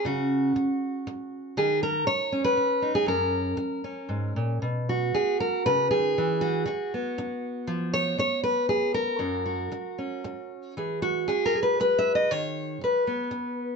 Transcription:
Already playing: steel-string acoustic guitar C#4
0.05 steel-string acoustic guitar C#3 F#4
0.56 muted steel-string acoustic guitar stroke
1.07 muted steel-string acoustic guitar stroke
1.57 steel-string acoustic guitar D#3 G#4
1.83 steel-string acoustic guitar A#4
2.07 steel-string acoustic guitar C#5, muted steel-string acoustic guitar stroke
2.32 steel-string acoustic guitar C#4
2.44 steel-string acoustic guitar B4
2.57 muted steel-string acoustic guitar stroke
2.82 steel-string acoustic guitar D#4
2.95 steel-string acoustic guitar G#4
3.06 steel-string acoustic guitar F#2 A#4
3.57 muted steel-string acoustic guitar stroke
3.84 steel-string acoustic guitar C#4
4.09 steel-string acoustic guitar G#2
4.36 steel-string acoustic guitar A#2
4.62 steel-string acoustic guitar B2
4.89 steel-string acoustic guitar F#4
5.14 steel-string acoustic guitar G#4, muted steel-string acoustic guitar stroke
5.40 steel-string acoustic guitar A#4
5.66 steel-string acoustic guitar C#3 B4
5.91 steel-string acoustic guitar D#3 G#4
6.18 steel-string acoustic guitar E3
6.41 steel-string acoustic guitar F#4
6.66 steel-string acoustic guitar F#4, muted steel-string acoustic guitar stroke
6.94 steel-string acoustic guitar B3
7.18 muted steel-string acoustic guitar stroke
7.67 steel-string acoustic guitar F3
7.94 steel-string acoustic guitar C#5
8.18 steel-string acoustic guitar C#5, muted steel-string acoustic guitar stroke
8.44 steel-string acoustic guitar B4
8.69 steel-string acoustic guitar G#4, muted steel-string acoustic guitar stroke
8.94 steel-string acoustic guitar A#4
9.19 steel-string acoustic guitar F#2 F#4
9.46 steel-string acoustic guitar F#4
9.72 muted steel-string acoustic guitar stroke
9.98 steel-string acoustic guitar C#4
10.24 muted steel-string acoustic guitar stroke
10.77 steel-string acoustic guitar E3 G#4
11.02 steel-string acoustic guitar F#4
11.28 steel-string acoustic guitar G#4, muted steel-string acoustic guitar stroke
11.46 steel-string acoustic guitar A#4
11.55 steel-string acoustic guitar G#4
11.63 steel-string acoustic guitar B4
11.80 steel-string acoustic guitar B4, muted steel-string acoustic guitar stroke
11.99 steel-string acoustic guitar E5
12.15 steel-string acoustic guitar D#5
12.31 steel-string acoustic guitar D#3 C#5
12.81 steel-string acoustic guitar B4, muted steel-string acoustic guitar stroke
13.07 steel-string acoustic guitar B3
13.31 muted steel-string acoustic guitar stroke

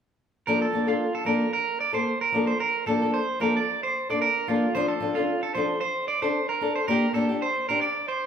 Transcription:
0.47 nylon-string guitar F3 A#3 D4 A4, clean electric guitar A#4
0.62 clean electric guitar A4
0.73 nylon-string guitar F3 A#3 D4 A4
0.87 nylon-string guitar A#3 D4 A4, clean electric guitar F4
1.15 clean electric guitar A4
1.25 nylon-string guitar F3 A#3 D4 A4, clean electric guitar A#4
1.53 clean electric guitar A#4
1.81 clean electric guitar D5
1.93 nylon-string guitar A#3 A4, clean electric guitar C5, muted nylon-string guitar stroke
2.21 clean electric guitar A#4
2.32 nylon-string guitar F3 A#3 D4 A4
2.47 clean electric guitar C5
2.60 clean electric guitar A#4
2.86 nylon-string guitar F3 A#3 D4 A4, clean electric guitar A4
3.02 nylon-string guitar A#3 D4 A4
3.14 clean electric guitar C5
3.40 nylon-string guitar F3 A#3 D4 A4, clean electric guitar A#4
3.57 clean electric guitar D5
3.83 clean electric guitar C5
4.10 nylon-string guitar A#3 D4 A4, clean electric guitar D5
4.22 clean electric guitar A#4
4.48 nylon-string guitar F3 A#3 D4 A4, clean electric guitar F4
4.75 nylon-string guitar F3 C4 D4, clean electric guitar C5, muted nylon-string guitar stroke
4.88 clean electric guitar A4
5.00 nylon-string guitar F3 C4 D4 A4
5.15 nylon-string guitar D4 A4, clean electric guitar F4
5.19 nylon-string guitar C4
5.43 clean electric guitar A4
5.55 nylon-string guitar F3 C4 D4 A4, clean electric guitar C5
5.81 clean electric guitar C5
6.08 clean electric guitar D5
6.22 nylon-string guitar C4 D4 A4, clean electric guitar C5
6.49 clean electric guitar A#4
6.61 nylon-string guitar C4 D4 A4
6.76 clean electric guitar C5
6.88 nylon-string guitar A#3 D4 G4, clean electric guitar A#4
7.13 nylon-string guitar A#3 D4 G4, clean electric guitar A4
7.29 nylon-string guitar D4 G4
7.42 clean electric guitar C5
7.69 nylon-string guitar D4 G4, clean electric guitar A#4
7.81 clean electric guitar D5
8.08 clean electric guitar C5

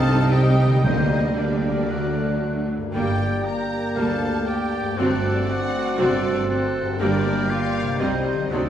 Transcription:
Already playing: double bass section C2, harp C3 C4 D#4 G4, cello section C3, viola section G3 D#4, french horn section C4 G4, clarinet C4, violin section A4 A5, trumpet section D#5, oboe F5, flute D#6
0.31 french horn section C4 G4, clarinet C4, violin section G4 G5, trumpet section D#5, oboe D#5, flute D#6
0.66 harp D3
0.71 harp A#3
0.75 harp D4
0.80 harp G4, violin section D#5
0.84 double bass section D2, timpani D3, cello section D3, viola section A#3, clarinet A#3, french horn section A#3 G4, violin section D#4, oboe C5, trumpet section D5, flute G6
1.36 clarinet A#3, french horn section A#3 G4, violin section D4 D5, oboe A#4, trumpet section D5, flute G6
1.71 harp D3
1.76 harp A3
1.80 harp D4
1.85 harp F#4, flute F#6
1.89 viola section F#3 A3, clarinet A3, french horn section A3 F#4, trumpet section D5
2.77 harp G2
2.81 harp A#3
2.86 harp D4
2.90 viola section A#3, clarinet A#3, harp G4, violin section G5
2.94 double bass section G1, cello section G2, viola section G3, french horn section A#3 G4, violin section G4, oboe D5, trumpet section D5, flute G6
3.44 clarinet A#3, violin section A#4 A#5, oboe G5, flute G6
3.96 cello section D2, double bass section D2, viola section G3 A#3, violin section A4 A5, oboe F5
4.47 clarinet A#3, violin section G4 G5, oboe D5, flute G6
4.80 harp G2
4.84 harp A3
4.89 harp C4
4.94 harp F#4
4.98 double bass section G1, cello section G2, viola section F#3 C4, french horn section A3 F#4, clarinet C4, violin section D4 D5, oboe A4, trumpet section C5, flute F#6
5.48 clarinet C4, violin section F#4 F#5, oboe D5, flute F#6
5.97 double bass section G1, cello section G2, viola section F#3 C4, clarinet C4, violin section D4 D5, oboe A4, flute F#6
6.48 clarinet C4, violin section C4 C5, oboe A4, flute F#6
6.82 harp G2
6.86 harp G3
6.90 harp A#3
6.95 clarinet A#3, harp G4
6.99 double bass section G1, cello section G2, french horn section G3 G4, viola section G3 A#3, violin section D4 D5, trumpet section A#4, oboe A#4, flute G6
7.48 violin section F4 F5, oboe D5
7.82 harp C3
7.87 harp G3
7.91 harp C4
7.95 harp G4
8.00 double bass section C2, cello section C3, french horn section G3 G4, viola section G3 C4, clarinet C4, violin section D#4 D#5, oboe C5, trumpet section C5, flute G6
8.33 harp D3
8.38 harp F#3
8.42 harp C4
8.47 harp D#4, violin section D5
8.51 double bass section D2, cello section D3, viola section F#3 C4, french horn section F#3 D#4, clarinet C4, violin section D4, oboe A4, trumpet section C5, flute D#6

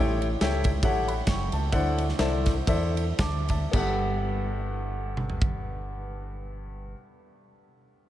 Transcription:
Already playing: upright piano D5
0.00 fingered electric bass A1, upright piano A2 E4 G4 A4 C#5 G5
0.22 ride
0.41 fingered electric bass C#2, upright piano E4 G4 A4 C#5 G5, snare, ride
0.64 kick, ride
0.83 fingered electric bass A1, upright piano E4 G4 A4 C#5 F#5, kick, ride
1.08 upright piano F#5 B5, ride
1.27 fingered electric bass F#1, upright piano G5 C#6, kick, snare, ride
1.52 fingered electric bass C#2, upright piano E5 A5, ride
1.72 fingered electric bass D2, upright piano D3 E4 A4 C5 D5 F#5, kick, ride
1.98 ride
2.09 snare
2.19 fingered electric bass C2, upright piano E4 A4 C5 D5 A5, snare, ride
2.46 kick, snare, ride
2.67 fingered electric bass E2, upright piano E4 A4 C5 D5 E5, kick, ride
2.97 ride
3.19 fingered electric bass D2, upright piano A5 D6, kick, snare, ride
3.49 upright piano E5 A5, kick, ride
3.71 fingered electric bass G1, upright piano G2 B3 G4 A4, kick, crash
3.76 upright piano F#5
5.17 mid tom
5.30 floor tom
5.42 kick

